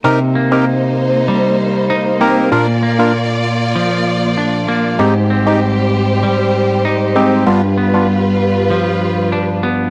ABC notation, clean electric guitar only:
X:1
M:4/4
L:1/8
Q:1/4=97
K:Cm
V:1 name="Clean electric guitar"
C, B,3 G,2 E B, | B,, B,3 F,2 D B, | A,, C3 G,2 E C | G,, =B,3 F,2 D B, |]